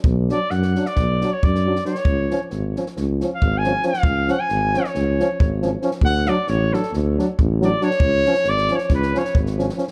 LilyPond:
<<
  \new Staff \with { instrumentName = "Trumpet" } { \time 9/8 \tempo 4. = 91 r8 d''8 fis''8. d''4 cis''16 d''4 cis''8~ | cis''4 r4. r16 eis''8 gis''8. eis''8~ | eis''8 fis''16 gis''4 cis''4. r4 r16 | fis''8 d''8 cis''8 a'8 r4. d''8 cis''8~ |
cis''4 d''8 cis''8 b'8 cis''8 r4. | }
  \new Staff \with { instrumentName = "Trombone" } { \time 9/8 r8 d'8 r8 d'8 r8 d'8 r8 d'8 d'8 | r8 cis'8 r8 cis'8 r8 cis'8 r8 cis'8 cis'8 | r8 cis'8 r8 cis'8 r8 cis'8 r8 cis'8 cis'8 | r8 d'8 r8 d'8 r8 d'8 r8 d'8 d'8 |
r8 cis'8 r8 cis'8 r8 cis'8 r8 cis'8 cis'8 | }
  \new Staff \with { instrumentName = "Euphonium" } { \clef bass \time 9/8 r8 fis8 r8 fis8 r8 fis8 r8 fis8 fis8 | r8 eis8 r8 eis8 r8 eis8 r8 eis8 eis8 | r8 eis8 r8 eis8 r8 eis8 r8 eis8 eis8 | r8 fis8 r8 fis8 r8 fis8 r8 fis8 fis8 |
r8 eis8 r8 eis8 r8 eis8 r8 eis8 eis8 | }
  \new Staff \with { instrumentName = "Tuba" } { \clef bass \time 9/8 b,,4 fis,4 b,,4 fis,4. | cis,4 gis,,4 cis,4 gis,,4. | cis,4 gis,,4 cis,4 gis,,4. | d,4 a,,4 d,4 a,,4. |
cis,4 gis,,4 cis,4 gis,,4. | }
  \new DrumStaff \with { instrumentName = "Drums" } \drummode { \time 9/8 bd8 sn8 sn16 sn16 sn16 sn16 <bd sn>8 sn8 bd16 sn8 sn16 sn16 sn16 | bd8 sn8 sn8 sn16 sn16 sn8 sn8 bd8 sn8 sn16 sn16 | bd8 sn8 sn8 sn16 sn16 sn8 sn8 bd8 sn8 sn16 sn16 | bd8 sn8 sn8 sn16 sn16 sn8 sn8 bd8 sn8 sn16 sn16 |
bd8 sn16 sn16 sn16 sn16 sn16 sn16 <bd sn>16 sn16 sn16 sn16 bd16 sn16 sn16 sn16 sn16 sn16 | }
>>